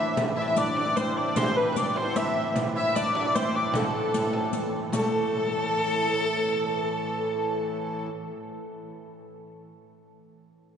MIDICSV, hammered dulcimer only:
0, 0, Header, 1, 2, 480
1, 0, Start_track
1, 0, Key_signature, 0, "minor"
1, 0, Tempo, 396825
1, 204, Time_signature, 3, 2, 24, 8
1, 6444, Tempo, 392670
1, 13097, End_track
2, 0, Start_track
2, 0, Title_t, "Hammered dulcimer"
2, 0, Program_c, 0, 15
2, 0, Note_on_c, 0, 60, 71
2, 0, Note_on_c, 0, 62, 68
2, 0, Note_on_c, 0, 64, 73
2, 434, Note_off_c, 0, 64, 0
2, 439, Note_on_c, 0, 64, 90
2, 686, Note_off_c, 0, 62, 0
2, 691, Note_on_c, 0, 62, 91
2, 930, Note_off_c, 0, 62, 0
2, 935, Note_on_c, 0, 62, 78
2, 1102, Note_off_c, 0, 62, 0
2, 1107, Note_on_c, 0, 62, 64
2, 1190, Note_off_c, 0, 60, 0
2, 1195, Note_on_c, 0, 60, 82
2, 1665, Note_off_c, 0, 60, 0
2, 1670, Note_on_c, 0, 60, 83
2, 2155, Note_off_c, 0, 62, 0
2, 2160, Note_on_c, 0, 62, 85
2, 2391, Note_off_c, 0, 60, 0
2, 2396, Note_on_c, 0, 60, 70
2, 2615, Note_off_c, 0, 64, 0
2, 2620, Note_on_c, 0, 64, 79
2, 3326, Note_off_c, 0, 64, 0
2, 3331, Note_on_c, 0, 64, 93
2, 3568, Note_off_c, 0, 62, 0
2, 3573, Note_on_c, 0, 62, 86
2, 4054, Note_off_c, 0, 60, 0
2, 4059, Note_on_c, 0, 60, 89
2, 4284, Note_off_c, 0, 62, 0
2, 4289, Note_on_c, 0, 62, 78
2, 4536, Note_on_c, 0, 57, 78
2, 5954, Note_off_c, 0, 57, 0
2, 5959, Note_on_c, 0, 57, 104
2, 7554, Note_off_c, 0, 64, 0
2, 8828, Note_off_c, 0, 62, 0
2, 8923, Note_off_c, 0, 60, 0
2, 11379, Note_off_c, 0, 57, 0
2, 13097, End_track
0, 0, End_of_file